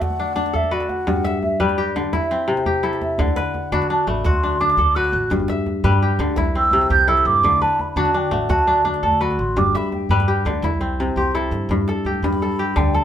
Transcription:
Already playing: D3 A3 D4 E4 F#4 B4
0.01 F#5, djembe slap, djembe bass
0.10 djembe slap, djembe tone
0.20 D4
0.28 djembe slap
0.36 D4, djembe slap, djembe tone
0.46 djembe slap
0.53 A4 E5, djembe slap, djembe bass
0.64 djembe slap, djembe tone
0.71 F#4 B4 D5
0.80 djembe slap
0.89 F#5, djembe tone
1.07 G2, djembe bass
1.16 djembe tone
1.24 E5, djembe slap
1.34 djembe slap
1.43 E5, djembe tone
1.52 djembe slap
1.60 G3 B4 D5, djembe slap, djembe bass
1.69 djembe slap, djembe tone
1.78 G4
1.96 D3 F#5, djembe slap, djembe tone
2.05 djembe slap
2.13 E4 E5, djembe slap, djembe bass
2.22 djembe tone
2.31 C4
2.48 C3
2.57 djembe slap
2.66 G4, djembe bass
2.75 djembe tone
2.83 E4 A4, djembe slap
2.93 djembe slap
3.01 E5, djembe slap, djembe tone
3.18 D2 D3 F#5, djembe bass
3.28 djembe slap, djembe tone
3.36 B4, djembe slap
3.54 djembe tone
3.64 djembe slap
3.72 D3 D4 F#4 B5, djembe bass
3.82 djembe slap, djembe tone
3.90 D4 A5
4.07 A1 A3 B5, djembe tone
4.25 D2 F#4 C6, djembe slap, djembe bass
4.33 djembe slap, djembe tone
4.43 D4
4.51 djembe slap
4.60 D4 D6, djembe slap, djembe tone
4.70 djembe slap
4.77 D2 A4, djembe slap, djembe bass
4.86 djembe slap, djembe tone
4.95 F#4 B4 F#6
5.04 djembe slap
5.12 A1, djembe tone
5.30 G1 G2, djembe bass
5.40 djembe slap, djembe tone
5.48 E5, djembe slap
5.66 djembe tone
5.74 djembe slap
5.84 G2 G3 B4, djembe bass
5.92 djembe slap, djembe tone
6.02 G4
6.19 D2 D3, djembe tone
6.36 C2 E4, djembe slap, djembe bass
6.45 djembe slap, djembe tone
6.55 C4 E6
6.63 djembe slap
6.71 C3, djembe slap, djembe tone
6.81 djembe slap
6.89 C2 G4 G6, djembe slap, djembe bass
6.98 djembe slap, djembe tone
7.08 E4 A4 E6
7.17 djembe slap
7.25 G2 D6, djembe tone
7.43 D2 D3, djembe bass
7.53 djembe tone
7.62 B4 A5
7.79 B5, djembe tone
7.88 B5, djembe slap
7.96 D3 D4 F#4 A5, djembe bass
8.05 djembe slap, djembe tone
8.14 D4 G5
8.31 A1 A3 F#5, djembe tone
8.49 D2 F#4 A5, djembe slap, djembe bass
8.59 djembe slap, djembe tone
8.67 D4
8.85 D4, djembe slap, djembe tone
8.94 djembe slap
9.03 D2 A4 A5, djembe slap, djembe bass
9.12 djembe slap, djembe tone
9.21 F#4 B4 B5
9.30 djembe slap
9.39 A1 C6
9.56 G1 G2 D6, djembe bass
9.66 djembe tone
9.75 E5 B5, djembe slap
9.84 djembe slap
9.92 G5, djembe tone
10.09 G2 G3 B4 B5, djembe bass
10.20 djembe slap, djembe tone
10.28 G4
10.45 D2 D3, djembe tone
10.55 djembe slap
10.62 C2 E4, djembe slap, djembe bass
10.74 djembe tone
10.81 C4, djembe slap
10.92 djembe slap
11.00 C3, djembe bass
11.16 C2 G4 C6, djembe bass
11.35 E4 A4, djembe slap
11.51 G2, djembe slap
11.69 G2, djembe tone, djembe bass
11.88 A4, djembe slap
12.05 D2 G4, djembe slap
12.14 djembe slap, djembe tone
12.22 G2 G3 B5, djembe bass
12.33 djembe slap
12.42 A4
12.59 G4
12.76 D2 D3 G5, djembe slap, djembe bass
12.85 djembe slap
12.94 A4 A5, djembe tone

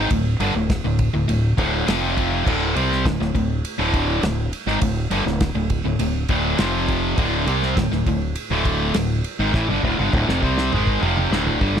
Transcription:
Already playing: G#2 D#3
0.11 D1 D2 A2, kick, ride
0.39 G1 G2 D3, ride
0.55 D1 D2 A2
0.70 kick, snare, ride
0.84 D1 D2 A2
0.99 kick, ride
1.14 D1 D2 A2
1.28 D1 D2 A2, ride
1.57 D1 D2 A2 D3, kick, ride
1.87 F1 F2 C3 F3, snare, ride
2.17 kick, ride
2.46 D1 D2 A2 D3, kick, crash
2.75 C2 C3 G3 C4, ride
2.92 snare
3.05 D1 D2 A2, kick, snare, ride
3.20 D1 D2 A2, snare
3.34 D1 D2 A2, kick, ride
3.65 ride
3.78 D1 D2 A2 D3
3.94 kick, ride
4.22 D1 D2 A2, snare, ride
4.53 ride
4.67 G#1 G#2 D#3, snare
4.81 D1 D2 A2, kick, ride
5.11 G1 G2 D3, ride
5.26 D1 D2 A2, snare
5.41 kick, snare, ride
5.55 D1 D2 A2
5.70 kick, ride
5.85 D1 D2 A2
5.99 D1 D2 A2, ride
6.29 D1 D2 A2 D3, kick, ride
6.58 F1 F2 C3 F3, snare, ride
6.88 kick, ride
7.17 D1 D2 A2 D3, kick, ride
7.47 C2 C3 G3 C4, ride
7.63 snare
7.76 D1 D2 A2, kick, snare, ride
7.92 D1 D2 A2, snare
8.06 D1 D2 A2, kick, ride
8.36 ride
8.51 D1 D2 A2 D3
8.65 kick, ride
8.94 D1 D2 A2, snare, ride
9.24 ride
9.39 G#1 G#2 D#3
9.54 A1 A2 E3, kick, snare
9.69 G1 G2 D3, high tom
9.83 D1 D2 A2, kick
9.99 G1 G2 D3, high tom
10.13 D1 D2 A2, kick, mid tom
10.27 F1 F2 C3, snare
10.42 C2 C3 G3 C4, kick
10.58 snare
10.72 G#1 G#2 D#3 G#3, mid tom
10.87 kick
11.01 F1 F2 C3 F3, mid tom
11.17 mid tom
11.31 D1 D2 A2 D3, snare
11.47 floor tom
11.60 G1 G2 D3 G3, kick
11.77 snare

